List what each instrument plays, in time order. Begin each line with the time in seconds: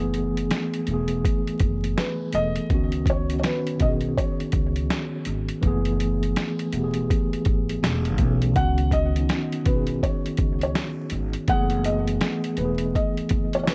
Already playing: upright bass F#1, tine electric piano E3 A3 B3 G#4
0.14 closed hi-hat
0.37 closed hi-hat
0.51 snare, closed hi-hat
0.74 closed hi-hat
0.87 upright bass E1, tine electric piano E3 A3, closed hi-hat
0.92 tine electric piano B3 G#4
1.08 closed hi-hat
1.25 kick, closed hi-hat
1.47 muted upright bass stroke, closed hi-hat
1.60 upright bass F#1, kick, closed hi-hat
1.84 closed hi-hat
1.97 felt piano B4, snare, closed hi-hat
2.33 upright bass E1, tine electric piano E3 A3 B3, felt piano D#5, closed hi-hat
2.38 tine electric piano A4
2.56 closed hi-hat
2.69 upright bass C#2, tine electric piano D#3 B3 C#4, kick, closed hi-hat
2.74 tine electric piano F#4
2.92 closed hi-hat
3.06 kick, closed hi-hat
3.10 felt piano C#5
3.27 tine electric piano D#3 B3, closed hi-hat
3.31 tine electric piano C#4 F#4
3.40 felt piano C#5, closed hi-hat
3.44 felt piano B4, snare
3.67 closed hi-hat
3.77 upright bass B1, tine electric piano D#3 B3 C#4, kick, closed hi-hat
3.82 tine electric piano F#4, felt piano D#5
3.89 tine electric piano G#4
4.01 closed hi-hat
4.17 felt piano C#5, kick, closed hi-hat
4.40 muted upright bass stroke, closed hi-hat
4.52 upright bass C#2, kick, closed hi-hat
4.76 closed hi-hat
4.90 snare, closed hi-hat
5.25 upright bass G#1, closed hi-hat
5.49 closed hi-hat
5.61 upright bass F#1, tine electric piano E3 A3, kick, closed hi-hat
5.66 tine electric piano B3 G#4
5.85 closed hi-hat
6.00 closed hi-hat
6.23 closed hi-hat
6.36 snare, closed hi-hat
6.59 closed hi-hat
6.72 upright bass E1, tine electric piano E3 A3 B3, closed hi-hat
6.78 tine electric piano G4
6.84 tine electric piano G#4
6.94 closed hi-hat
7.10 kick, closed hi-hat
7.33 muted upright bass stroke, closed hi-hat
7.45 upright bass G#1, kick, closed hi-hat
7.69 closed hi-hat
7.83 upright bass E1, snare, closed hi-hat
8.05 closed hi-hat
8.18 upright bass B1, tine electric piano E3 A3 B3, kick, closed hi-hat
8.24 tine electric piano C#4
8.42 closed hi-hat
8.53 upright bass C#2, tine electric piano D#3 B3 C#4, felt piano F#5, kick, closed hi-hat
8.59 tine electric piano F#4
8.78 closed hi-hat
8.91 felt piano D#5, kick, closed hi-hat
9.14 tine electric piano D#3 B3 C#4, closed hi-hat
9.20 tine electric piano D#4
9.29 snare, closed hi-hat
9.52 closed hi-hat
9.64 upright bass B1, tine electric piano D#3 B3 C#4, felt piano B4, kick, closed hi-hat
9.69 tine electric piano F#4
9.76 tine electric piano G#4
9.87 closed hi-hat
10.03 felt piano C#5, kick, closed hi-hat
10.26 muted upright bass stroke, closed hi-hat
10.37 upright bass C#2, kick, closed hi-hat
10.61 felt piano C#5, closed hi-hat
10.75 snare, closed hi-hat
11.10 upright bass G#1, closed hi-hat
11.33 closed hi-hat
11.48 upright bass F#1, tine electric piano E3 A3 B3, felt piano F#5, kick, closed hi-hat
11.53 tine electric piano G#4
11.70 closed hi-hat
11.84 felt piano D#5, closed hi-hat
12.08 closed hi-hat
12.21 snare, closed hi-hat
12.44 closed hi-hat
12.57 upright bass E1, tine electric piano E3, felt piano B4, closed hi-hat
12.61 tine electric piano A3 B3 G#4
12.78 closed hi-hat
12.95 felt piano D#5, kick, closed hi-hat
13.17 muted upright bass stroke, closed hi-hat
13.29 upright bass F#1, kick, closed hi-hat
13.53 felt piano C#5, closed hi-hat
13.63 felt piano C#5, snare
13.68 felt piano B4, closed hi-hat